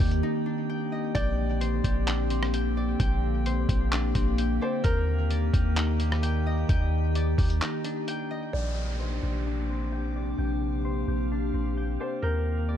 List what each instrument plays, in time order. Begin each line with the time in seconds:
Already playing: ambient pad D#3 A#3 C4 G4, harp A#3 D5 D#5 G5, synth texture D#4 D5 G5
0.00 808-style bass D#2, harp G4, kick, closed hi-hat, open hi-hat
0.11 closed hi-hat
0.23 harp D#4
0.46 harp D4
0.70 harp G5
0.92 harp D#5
1.15 808-style bass A#1, ambient pad D3 A#3 C4, synth texture D4 C5, felt piano D5, harp G5, kick, closed hi-hat
1.61 harp C5, closed hi-hat
1.84 808-style bass A#1, harp G4, kick, closed hi-hat
2.07 harp D4, clap, closed hi-hat
2.30 harp C4, closed hi-hat
2.43 cross-stick
2.54 harp G5, closed hi-hat
2.77 harp D5
3.00 808-style bass A#1, synth texture D5, harp G5, kick, closed hi-hat
3.46 harp C5, closed hi-hat
3.69 808-style bass A#1, harp G4, kick, closed hi-hat
3.92 harp D4, clap, closed hi-hat
4.15 808-style bass A#1, harp C4, kick, closed hi-hat
4.38 harp G5, closed hi-hat
4.61 felt piano C5, harp D5
4.84 808-style bass D#2, ambient pad D#3 G4, synth texture D#4 G5, felt piano A#4, harp G5, kick, closed hi-hat
5.30 harp D5, closed hi-hat
5.54 808-style bass D#2, harp G4, kick, closed hi-hat
5.77 harp D#4, clap, closed hi-hat
6.00 harp A#3, closed hi-hat
6.12 cross-stick
6.23 harp G5, closed hi-hat
6.46 harp D#5
6.69 808-style bass D#2, harp G5, kick, closed hi-hat
7.15 harp D5, closed hi-hat
7.38 808-style bass D#2, harp G4, kick, closed hi-hat, open hi-hat
7.50 closed hi-hat
7.61 harp D#4, clap, closed hi-hat
7.84 harp D4, closed hi-hat
8.08 harp G5, closed hi-hat
8.31 harp D#5
8.53 808-style bass A#1, ambient pad C3 A#3 D4 G4, synth texture C5 G5 D6, felt piano D5, harp G5, downlifter
8.99 harp C5
9.23 808-style bass A#1, harp G4
9.46 harp D4
9.69 harp C4
9.92 harp G5
10.16 harp D5
10.38 808-style bass A#1, synth texture F5, harp G5
10.85 harp C5
11.08 808-style bass A#1, harp G4
11.31 harp D4
11.54 808-style bass A#1, harp C4
11.77 harp G5
12.00 felt piano C5, harp D5
12.22 808-style bass D#2, ambient pad D#3, felt piano A#4, synth texture A#4 D#5 G5, harp G5
12.69 harp D5